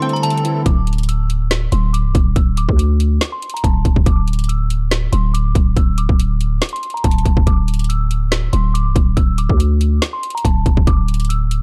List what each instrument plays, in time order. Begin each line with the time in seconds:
Already playing: synth keys D3 G3 A3 C4 E4, accordion E3 C4 A4, synth bell C6
0.02 synth keys C4, synth pluck G5, closed hi-hat
0.09 closed hi-hat
0.13 synth bell A#5, closed hi-hat
0.23 synth keys D3, synth bell A5, closed hi-hat
0.30 closed hi-hat
0.38 closed hi-hat
0.44 synth keys E4, closed hi-hat
0.66 808-style bass D1, synth bell D6, kick, closed hi-hat
0.87 closed hi-hat
0.93 closed hi-hat
0.98 closed hi-hat
1.03 closed hi-hat
1.09 synth bell E6, closed hi-hat
1.30 closed hi-hat
1.51 snare, closed hi-hat
1.72 808-style bass D1, synth bell C6, closed hi-hat
1.93 synth bell D6, closed hi-hat
2.05 808-style bass C1
2.15 808-style bass D1, kick, closed hi-hat
2.36 808-style bass D1, synth bell E6, kick, closed hi-hat
2.57 synth bell D6, closed hi-hat
2.69 808-style bass D2, kick
2.79 closed hi-hat
3.00 closed hi-hat
3.21 snare, closed hi-hat
3.32 synth bell C6
3.42 closed hi-hat
3.50 closed hi-hat
3.54 synth bell A#5, closed hi-hat
3.64 808-style bass D1, synth bell A5, kick, closed hi-hat
3.85 808-style bass D1, kick, closed hi-hat
3.96 808-style bass C1, kick
4.06 808-style bass D1, synth bell D6, kick, closed hi-hat
4.28 closed hi-hat
4.33 closed hi-hat
4.39 closed hi-hat
4.44 closed hi-hat
4.49 synth bell E6, closed hi-hat
4.70 closed hi-hat
4.91 snare, closed hi-hat
5.12 808-style bass D1, synth bell C6, closed hi-hat
5.34 synth bell D6, closed hi-hat
5.55 808-style bass D1, kick, closed hi-hat
5.76 808-style bass D1, synth bell E6, kick, closed hi-hat
5.98 synth bell D6, closed hi-hat
6.09 808-style bass D1, kick
6.20 closed hi-hat
6.41 closed hi-hat
6.62 snare, closed hi-hat
6.69 synth bell C6, closed hi-hat
6.76 closed hi-hat
6.83 closed hi-hat
6.90 closed hi-hat
6.94 synth bell A#5, closed hi-hat
7.04 808-style bass D1, synth bell A5, kick, closed hi-hat
7.11 closed hi-hat
7.18 closed hi-hat
7.25 808-style bass D1, kick, closed hi-hat
7.37 808-style bass D1, kick
7.47 808-style bass D1, synth bell D6, kick, closed hi-hat
7.68 closed hi-hat
7.74 closed hi-hat
7.79 closed hi-hat
7.84 closed hi-hat
7.89 synth bell E6, closed hi-hat
8.11 closed hi-hat
8.32 snare, closed hi-hat
8.53 808-style bass D1, synth bell C6, closed hi-hat
8.74 synth bell D6, closed hi-hat
8.86 808-style bass C1
8.96 808-style bass D1, kick, closed hi-hat
9.17 808-style bass D1, synth bell E6, kick, closed hi-hat
9.38 synth bell D6, closed hi-hat
9.49 808-style bass D2, kick
9.60 closed hi-hat
9.81 closed hi-hat
10.02 snare, closed hi-hat
10.13 synth bell C6
10.23 closed hi-hat
10.30 closed hi-hat
10.35 synth bell A#5, closed hi-hat
10.44 808-style bass D1, synth bell A5, kick, closed hi-hat
10.66 808-style bass D1, kick, closed hi-hat
10.77 808-style bass C1, kick
10.87 808-style bass D1, synth bell D6, kick, closed hi-hat
11.08 closed hi-hat
11.14 closed hi-hat
11.20 closed hi-hat
11.25 closed hi-hat
11.29 synth bell E6, closed hi-hat
11.51 closed hi-hat